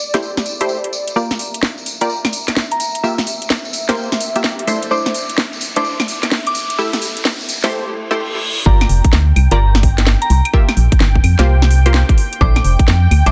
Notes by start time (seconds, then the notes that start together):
Already playing: D5
0.14 A3 E4 G4 C5, snare, closed hi-hat, tambourine
0.23 tambourine
0.37 snare, tambourine
0.46 closed hi-hat, tambourine
0.60 A3 E4 G4 C5, closed hi-hat, tambourine
0.69 tambourine
0.84 closed hi-hat
0.93 tambourine
1.07 closed hi-hat, tambourine
1.16 A#3 F4 G4 D5 E5 A#5, tambourine, riser
1.31 snare, closed hi-hat, tambourine
1.39 open hi-hat, tambourine
1.54 closed hi-hat, tambourine
1.63 snare, tambourine
1.78 tambourine
1.86 open hi-hat, tambourine
2.01 A#3 F4 G4 D5 A#5, closed hi-hat, tambourine
2.09 tambourine
2.25 snare, tambourine, claves
2.33 open hi-hat, tambourine
2.48 snare, closed hi-hat, claves
2.56 snare, tambourine
2.71 A#5, closed hi-hat
2.80 open hi-hat, tambourine
2.95 closed hi-hat, tambourine
3.03 A#3 F4 G4 E5, tambourine
3.18 snare, closed hi-hat, tambourine
3.27 open hi-hat, tambourine
3.42 closed hi-hat, tambourine
3.50 snare, tambourine
3.65 tambourine
3.73 open hi-hat, tambourine
3.89 A#3 F4 G4 C5, snare, closed hi-hat
3.97 tambourine
4.12 snare, tambourine
4.20 open hi-hat, tambourine
4.35 A#3 F4 G4 E5, closed hi-hat, tambourine
4.44 snare, tambourine
4.59 closed hi-hat
4.67 A3 D4 E4 C5, open hi-hat, tambourine
4.82 closed hi-hat, tambourine
4.91 A3 D4 E4 C5 D6, tambourine
5.06 snare, closed hi-hat, tambourine
5.14 open hi-hat, tambourine
5.29 closed hi-hat, tambourine
5.38 snare, tambourine
5.53 tambourine
5.61 open hi-hat, tambourine
5.76 A3 D4 E4 C5 D6, closed hi-hat, tambourine
5.84 tambourine
6.00 snare, tambourine, claves
6.08 open hi-hat, tambourine
6.22 snare, closed hi-hat, tambourine, claves
6.31 snare, tambourine
6.47 D6, closed hi-hat
6.55 open hi-hat, tambourine
6.70 closed hi-hat, tambourine
6.78 A3 E4 G4 E5, tambourine
6.93 snare, closed hi-hat, tambourine
7.02 open hi-hat, tambourine
7.17 closed hi-hat, tambourine
7.25 snare, tambourine
7.41 tambourine
7.49 open hi-hat, tambourine
7.64 A3 E4 G4 C5, snare, closed hi-hat
7.72 reverse cymbal
8.11 A3 E4 G4 C5
8.66 G1 A#3 F4 G4 D5 G5 A#5, kick
8.81 snare, closed hi-hat, claves
8.89 F1, open hi-hat
9.04 kick, closed hi-hat
9.13 D2, snare
9.36 C2, open hi-hat, claves
9.51 G1 A#3 F4 G4 D5 A#5, closed hi-hat
9.75 snare
9.83 kick, open hi-hat
9.98 snare, closed hi-hat
10.07 snare
10.22 A#5, closed hi-hat
10.30 C2, open hi-hat
10.45 closed hi-hat, claves
10.53 A#3 F4 G4 E5, kick
10.69 snare, closed hi-hat, claves
10.77 A#1, open hi-hat
10.92 kick, closed hi-hat
11.00 G1, snare
11.15 kick
11.24 F2, open hi-hat, claves
11.39 C2 A#3 F4 G4 C5, snare, closed hi-hat
11.62 snare
11.71 open hi-hat
11.86 A#3 F4 G4 C5, closed hi-hat
11.94 snare
12.09 kick, closed hi-hat
12.18 open hi-hat
12.33 closed hi-hat
12.41 A#1 A3 D4 E4 C5 D6, kick
12.56 snare, closed hi-hat, claves
12.64 F1, open hi-hat
12.79 kick, closed hi-hat
12.88 F2, snare
13.11 D2, open hi-hat, claves
13.26 A#1 A3 D4 E4 C5 D6, closed hi-hat